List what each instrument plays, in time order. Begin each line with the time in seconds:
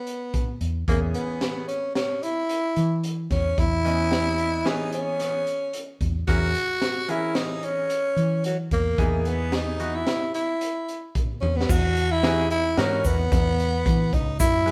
Already playing: tenor saxophone B3
0.07 closed hi-hat
0.34 kick, closed hi-hat
0.61 fretless electric bass E2, closed hi-hat
0.88 fretless electric bass E2, grand piano E3 B3 C#4 G#4, tenor saxophone A#3, kick, closed hi-hat
1.14 tenor saxophone B3, closed hi-hat
1.41 snare, closed hi-hat
1.68 tenor saxophone C#4, closed hi-hat
1.95 tenor saxophone C#4, snare, closed hi-hat
2.23 tenor saxophone E4, closed hi-hat
2.49 closed hi-hat
2.76 fretless electric bass E3, closed hi-hat
3.04 closed hi-hat
3.31 fretless electric bass E2, tenor saxophone C#4, kick, snare, closed hi-hat
3.58 fretless electric bass E2, tenor saxophone E4, kick, closed hi-hat
3.85 grand piano E3 B3 C#4 D#5, closed hi-hat
4.12 snare, closed hi-hat
4.38 closed hi-hat
4.65 grand piano E3 B3 C#4 G#4, tenor saxophone D#4, snare, closed hi-hat
4.92 tenor saxophone C#4, closed hi-hat
5.20 snare, closed hi-hat
5.47 closed hi-hat
5.73 closed hi-hat
6.01 fretless electric bass E2, kick, closed hi-hat
6.27 fretless electric bass E2, grand piano E3 C#4 G#4 A#4, tenor saxophone F#4, kick, closed hi-hat
6.54 closed hi-hat
6.82 snare, closed hi-hat
7.08 grand piano E3 C#4 G#4 A#4, tenor saxophone E4, closed hi-hat
7.35 tenor saxophone D#4, snare, closed hi-hat
7.63 tenor saxophone C#4, closed hi-hat
7.90 closed hi-hat
8.16 fretless electric bass E3, closed hi-hat
8.44 tenor saxophone F#3, closed hi-hat
8.71 fretless electric bass E2, tenor saxophone A#3, kick, closed hi-hat
8.98 fretless electric bass E2, grand piano E3 B3 D#4 G#4, kick, closed hi-hat
9.25 tenor saxophone B3, closed hi-hat
9.52 tenor saxophone D#4, snare, closed hi-hat
9.79 grand piano E3 B3 D#4 F#4, closed hi-hat
9.95 tenor saxophone E4
10.07 snare, closed hi-hat
10.34 tenor saxophone E4, closed hi-hat
10.61 closed hi-hat
10.88 closed hi-hat
11.15 kick, closed hi-hat
11.41 fretless electric bass E2, tenor saxophone C#4, high tom
11.56 tenor saxophone B3
11.61 snare
11.69 fretless electric bass E2, tenor saxophone F#4, kick, crash, shaker
11.96 closed hi-hat
12.11 tenor saxophone E4
12.23 grand piano E3 D#4 F#4 G#4, snare, closed hi-hat
12.50 tenor saxophone E4, closed hi-hat
12.77 fretless electric bass G#2, grand piano E3 D#4 F#4 A#4, tenor saxophone C#4, snare, closed hi-hat
13.04 fretless electric bass E2, tenor saxophone B3, kick, closed hi-hat, shaker
13.32 fretless electric bass E2, kick, snare, closed hi-hat, shaker
13.59 closed hi-hat
13.86 fretless electric bass E3, kick, closed hi-hat
14.13 fretless electric bass C#2, tenor saxophone D#4, kick, closed hi-hat
14.40 fretless electric bass F#2, tenor saxophone E4, kick, closed hi-hat, shaker
14.66 grand piano F#3 E4 G#4 B4, closed hi-hat